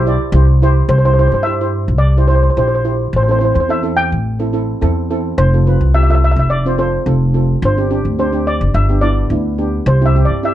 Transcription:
Already playing: B1 C5 E5
0.06 E4 G4 D5
0.32 C2 E4 G4 C5
0.62 E4 G4 C5
0.89 C2 C5
0.98 C5
1.05 E4 G4 C5
1.14 C5
1.19 E4 G4 C5
1.28 C5
1.32 G2 C5
1.43 E4 G4 C5 E5
1.61 E4 G4 C5
1.88 C2
1.98 D5
2.17 E4 G4 C5
2.28 E4 G4 C5
2.35 C5
2.43 C5
2.50 C5
2.57 A#1 E4 G4 C5
2.68 C5
2.75 C5
2.85 E4 G4 C5
3.13 A1 C5
3.23 C5
3.28 C4 E4 A4 C5
3.39 C4 E4 C5
3.45 C5
3.54 E2 C5
3.60 C5
3.69 C4 E4 A4 E5
3.83 C4 E4 A4
3.97 G5
4.12 A1
4.39 C4 E4 A4
4.53 C4 E4 A4
4.81 E2 C4 E4 A4
5.10 C4 E4 A4
5.38 F1 C5
5.54 C4 F4 A4
5.66 C4 F4 B4
5.81 C2
5.94 C4 F4 G4 E5
6.03 E5
6.09 C4 F4 A4 E5
6.15 E5
6.24 E5
6.31 E5
6.36 F1 E5
6.50 D5
6.66 C4 F4 C5
6.78 C4 F4 A4 C5
7.06 F1 C4 F4 A4
7.34 C4 F4 A4
7.62 G1 C5
7.78 C4 D4 G4
7.90 C4 D4 G4
8.05 D2
8.19 C4 D4 G4 C5
8.32 C4 D4 G4
8.47 D5
8.61 G1
8.74 G1 E5
8.89 B3 D4 G4
9.01 B3 D4 E4 D5
9.30 D2 B3 D4 E4
9.58 B3 D4 G4
9.86 C2 C5
10.01 C4 E4 G4
10.06 E5
10.15 C4 E4 G4
10.25 G2 D5
10.43 C4 E4 G4 E5

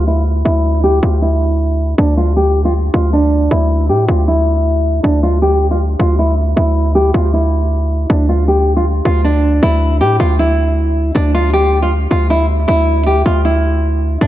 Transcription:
Already playing: D2
0.07 E4
0.45 D2 E4
0.84 G4
1.03 D2 F4
1.22 E4
1.98 D2 D4
2.17 F4
2.37 G4
2.65 F4
2.94 D2 F4
3.13 D4
3.51 D2 E4
3.89 A2 G4
4.08 D2 F4
4.28 E4
5.03 D2 D4
5.23 F4
5.42 G4
5.71 F4
5.99 D2 F4
6.19 E4
6.56 D2 E4
6.95 G4
7.14 D2 F4
7.33 E4
8.10 D2 D4
8.29 F4
8.48 G4
8.77 F4
9.05 D2 F4
9.24 D4
9.63 D2 E4
10.01 A2 G4
10.20 D2 F4
10.39 E4
11.15 D2 D4
11.35 F4
11.53 G4
11.82 F4
12.11 D2 F4
12.30 E4
12.68 D2 E4
13.07 G4
13.26 D2 F4
13.45 E4
14.21 D2 D4

